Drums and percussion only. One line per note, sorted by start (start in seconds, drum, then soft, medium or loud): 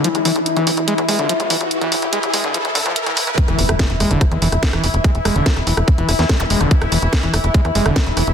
0.04 closed hi-hat medium
0.15 closed hi-hat soft
0.25 open hi-hat loud
0.36 closed hi-hat soft
0.46 closed hi-hat medium
0.57 closed hi-hat soft
0.67 open hi-hat loud
0.77 closed hi-hat soft
0.88 closed hi-hat medium
0.98 closed hi-hat soft
1.09 open hi-hat loud
1.19 closed hi-hat soft
1.29 closed hi-hat medium
1.40 closed hi-hat soft
1.50 open hi-hat loud
1.61 closed hi-hat soft
1.71 closed hi-hat medium
1.81 closed hi-hat soft
1.92 open hi-hat loud
2.02 closed hi-hat soft
2.13 closed hi-hat medium
2.23 closed hi-hat soft
2.34 open hi-hat loud
2.44 closed hi-hat soft
2.54 closed hi-hat medium
2.65 closed hi-hat soft
2.75 open hi-hat loud
2.86 closed hi-hat soft
2.96 closed hi-hat medium
3.06 closed hi-hat soft
3.17 open hi-hat loud
3.27 closed hi-hat soft
3.38 kick loud
3.38 closed hi-hat loud
3.48 cross-stick soft
3.48 closed hi-hat soft
3.59 open hi-hat loud
3.69 cross-stick medium
3.69 closed hi-hat soft
3.79 kick loud
3.79 snare loud
3.79 closed hi-hat loud
3.90 closed hi-hat soft
4.00 cross-stick soft
4.00 open hi-hat loud
4.11 closed hi-hat soft
4.21 kick loud
4.21 cross-stick medium
4.21 closed hi-hat loud
4.32 closed hi-hat soft
4.42 open hi-hat loud
4.52 cross-stick soft
4.52 closed hi-hat soft
4.63 kick loud
4.63 snare loud
4.63 closed hi-hat loud
4.73 cross-stick medium
4.73 closed hi-hat soft
4.84 open hi-hat loud
4.94 closed hi-hat soft
5.04 kick loud
5.04 cross-stick soft
5.04 closed hi-hat medium
5.15 closed hi-hat soft
5.25 cross-stick medium
5.25 open hi-hat loud
5.36 closed hi-hat soft
5.46 kick loud
5.46 snare loud
5.46 closed hi-hat medium
5.57 cross-stick soft
5.57 closed hi-hat soft
5.67 open hi-hat loud
5.77 cross-stick medium
5.77 closed hi-hat soft
5.88 kick loud
5.88 closed hi-hat medium
5.98 closed hi-hat soft
6.09 cross-stick soft
6.09 open hi-hat loud
6.19 snare soft
6.19 closed hi-hat soft
6.29 kick loud
6.29 cross-stick medium
6.29 snare loud
6.29 closed hi-hat loud
6.40 closed hi-hat soft
6.50 open hi-hat loud
6.61 cross-stick soft
6.61 closed hi-hat soft
6.71 kick loud
6.71 closed hi-hat medium
6.82 cross-stick medium
6.82 closed hi-hat soft
6.92 open hi-hat loud
7.02 closed hi-hat soft
7.13 kick loud
7.13 cross-stick soft
7.13 snare loud
7.13 closed hi-hat medium
7.23 closed hi-hat soft
7.34 cross-stick medium
7.34 open hi-hat loud
7.44 closed hi-hat soft
7.54 kick loud
7.54 closed hi-hat medium
7.65 cross-stick soft
7.65 closed hi-hat soft
7.75 open hi-hat loud
7.86 cross-stick medium
7.86 closed hi-hat soft
7.96 kick loud
7.96 snare loud
7.96 closed hi-hat medium
8.06 closed hi-hat soft
8.17 cross-stick soft
8.17 open hi-hat loud
8.27 closed hi-hat soft